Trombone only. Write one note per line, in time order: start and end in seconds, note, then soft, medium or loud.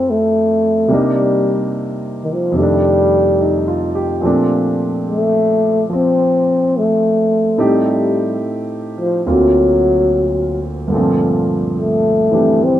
0.00 0.12 C4 medium
0.10 0.95 A3 medium
0.94 1.75 G3 medium
2.24 2.34 D#3 medium
2.33 2.57 F3 medium
2.58 3.94 G3 medium
5.09 5.87 A3 medium
5.93 6.80 C4 medium
6.78 7.60 A3 medium
7.63 8.40 G3 medium
9.00 9.24 F3 medium
9.30 10.65 F#3 medium
11.80 12.65 A3 medium
12.64 12.80 C4 medium